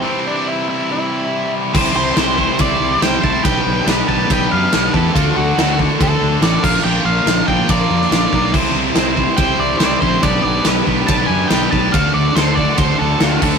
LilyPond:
<<
  \new Staff \with { instrumentName = "Lead electric guitar" } { \time 4/4 \key c \lydian \tempo 4 = 141 c'8 d'8 e'8 e'8 e'4. r8 | r8 c''4. d''4 g''8 a''8 | g''4 r8 a''8 g''8 f''4 a'8 | f'8 fis'4 r8 a'4 d''8 f''8 |
g''8 f''4 g''8 d''2 | r2 g''8 d''8 d''8 c''8 | d''8 d''8 r4 a''8 gis''8 g''8 a''8 | f''8 d''8 c''8 d''8 c''8 a'8 f'8 a'8 | }
  \new Staff \with { instrumentName = "String machine" } { \time 4/4 \key c \lydian r1 | <c' e' g' c''>1 | <b d' g' b'>1 | <a d' fis' a'>2.~ <a d' fis' a'>8 <bes d' f' bes'>8~ |
<bes d' f' bes'>1 | <c' e' g' c''>1 | <b d' g' b'>1 | <a d' fis' a'>2.~ <a d' fis' a'>8 <a d' fis' a'>8 | }
  \new Staff \with { instrumentName = "Distorted electric guitar" } { \time 4/4 \key c \lydian <c e g c' e'>1 | <c e g c' e' c''>4 <c e g c' e' c''>8 <g c' e' c''>8 <g c' e' c''>4 <g c' e' c''>8 <g c' e' c''>8 | <b d' g' b'>4 <b d' g' b'>8 <d' g' b'>8 <b d' g' b'>4 <b d' g' b'>8 <d' g' b'>8 | <d d' fis' a'>4 <d d' fis' a'>8 <d' fis' a'>8 <d d' fis' a'>4 <d d' fis' a'>8 <bes, f bes d' f' bes'>8 |
<bes, f bes d' f' bes'>4 <bes, f bes d' f' bes'>8 <bes d' f' bes'>8 <bes d' f' bes'>4 <bes d' f' bes'>8 <bes d' f' bes'>8 | <c e g c' e' c''>4 <c e g c' e' c''>8 <g c' e' c''>8 <g c' e' c''>4 <g c' e' c''>8 <g c' e' c''>8 | <b d' g' b'>4 <b d' g' b'>8 <d' g' b'>8 <b d' g' b'>4 <b d' g' b'>8 <d' g' b'>8 | <d d' fis' a'>4 <d d' fis' a'>8 <d' fis' a'>8 <d d' fis' a'>4 <d d' fis' a'>8 <d d' fis' a'>8 | }
  \new Staff \with { instrumentName = "Fingered electric bass" } { \clef bass \time 4/4 \key c \lydian r1 | c,8 c,8 c,4 c,8 c,8 c,8 c,8 | b,,8 b,,8 b,,8 b,,8 b,,8 fis,8 b,,8 e,8 | d,8 d,8 d,4 d,8 d,8 a,,8 bes,,8 |
bes,,8 bes,,8 bes,,8 bes,,8 bes,,8 f,8 bes,,8 b,,8 | c,8 c,8 c,4 c,8 c,8 c,8 bes,,8 | b,,8 b,,8 b,,8 b,,8 b,,8 fis,8 b,,8 b,,8 | d,8 d,8 d,4 d,8 d,8 d,8 d,8 | }
  \new DrumStaff \with { instrumentName = "Drums" } \drummode { \time 4/4 r4 r4 r4 r4 | <cymc bd>4 <rb sn>8 bd8 <bd rb>4 <rb sn>8 bd8 | <bd rb>4 <rb sn>8 bd8 <bd rb>4 <rb sn>8 bd8 | <bd rb>4 <rb sn>8 bd8 <bd rb>4 <rb sn>8 <cymc bd>8 |
r4 <rb sn>8 bd8 <bd rb>8. sn16 <rb sn>8 bd8 | <cymc bd>4 <rb sn>8 bd8 <bd rb>4 <rb sn>8 bd8 | <bd rb>4 <rb sn>8 bd8 <bd rb>4 <rb sn>8 bd8 | <bd rb>4 <rb sn>8 bd8 <bd rb>4 <rb sn>8 <cymc bd>8 | }
>>